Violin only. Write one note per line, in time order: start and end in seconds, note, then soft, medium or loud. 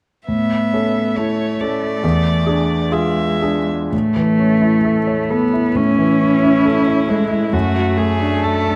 0.27 1.17 E5 soft
1.16 1.62 C#5 soft
1.61 2.94 D5 soft
2.92 3.71 E5 soft
5.75 7.55 E4 soft
7.53 7.99 F#4 soft
7.98 8.45 G#4 soft
8.44 8.76 A4 soft